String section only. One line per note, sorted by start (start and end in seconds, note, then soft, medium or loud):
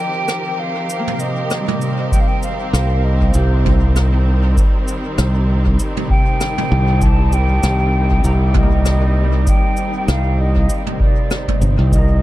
0.00 2.11 D#3 medium
0.00 2.13 F3 medium
0.00 12.22 C4 medium
0.00 4.21 G4 medium
0.00 11.92 A#4 medium
2.12 11.91 D#3 medium
2.50 11.92 G3 medium
3.39 12.22 D#4 medium
11.92 12.22 D#3 medium